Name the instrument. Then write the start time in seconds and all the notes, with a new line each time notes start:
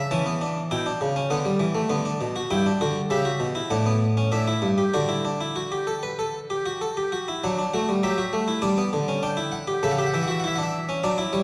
harpsichord
Already playing: E5
0.11 E3 C#4 A5
0.26 B3
0.41 D4
0.71 B2 E4 G5
0.86 D4
1.01 C#3
1.16 C#4
1.30 D3 B3 F#5
1.45 G3
1.60 E3
1.75 A3
1.90 D3 B3
2.05 D4
2.21 B2
2.36 F#4
2.51 G2 E4 G5
2.66 D4
2.81 D3 F#4
3.10 C#3 G4 E5
3.25 F#4
3.40 B2
3.55 E4
3.70 A2 D4 F#5
3.86 B3
4.17 C#4
4.32 A2 D4 E5
4.47 E4
4.62 G2
4.78 G4
4.94 D3 F#4 D5
5.09 E4
5.25 D4
5.41 E4
5.56 F#4
5.72 G4
5.87 A4
6.03 B4
6.19 A4
6.50 G4
6.66 F#4
6.81 A4
6.97 G4
7.12 F#4
7.28 E4
7.44 F#3 D4 F#5
7.59 D4
7.74 A3 F#4
7.89 G3
8.03 F#3 G4 E5
8.18 F#4
8.33 A3
8.48 E4
8.62 G3 D4 D5
8.78 B3
8.93 D3
9.08 C#4
9.23 D4 G5
9.37 E4
9.52 F#5
9.67 G4
9.83 C#3 A4 E5
9.91 F#5
9.98 G4 E5
10.07 F#5
10.14 E3 E5
10.23 F#5
10.28 F#4 E5
10.40 F#5
10.44 E4 E5
10.56 D4 F#5
10.63 E5
10.89 C#4
11.03 F#3 D4 D5
11.18 E4
11.33 G3 C#5